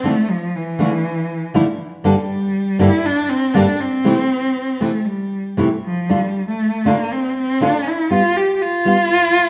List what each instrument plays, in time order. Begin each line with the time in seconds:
0.04 nylon-string guitar D3 F3 A3 D4 E4, cello A3
0.31 cello F3
0.56 cello E3
0.79 nylon-string guitar D3 F3 A3 D4 E4
1.54 nylon-string guitar D3 F3 A3 D4 E4
2.04 nylon-string guitar G2 D3 G3 A#3 D4 A4, cello G3
2.79 nylon-string guitar G2 D3 G3 A#3 D4 A4, cello E4
3.06 cello D4
3.29 cello C4
3.54 nylon-string guitar G2 D3 G3 A#3 D4 A4, cello D4
3.80 cello C4
4.04 nylon-string guitar C3 E3 A3 C4 E4
4.80 nylon-string guitar C3 E3 A3 C4 E4, cello A3
5.05 cello G3
5.57 nylon-string guitar C3 E3 A3 C4 E4
5.85 cello F3
6.09 nylon-string guitar D3 A3 D4 F4, cello G3
6.48 cello A3
6.85 nylon-string guitar D3 A3 D4 F4, cello A#3
7.12 cello C4
7.38 cello C4
7.61 nylon-string guitar D3 A3 D4 F4, cello D4
7.88 cello E4
8.11 nylon-string guitar G3 B3 F4, cello F4
8.36 cello G4
8.56 cello G4
8.62 cello F4
8.85 nylon-string guitar G3 B3 F4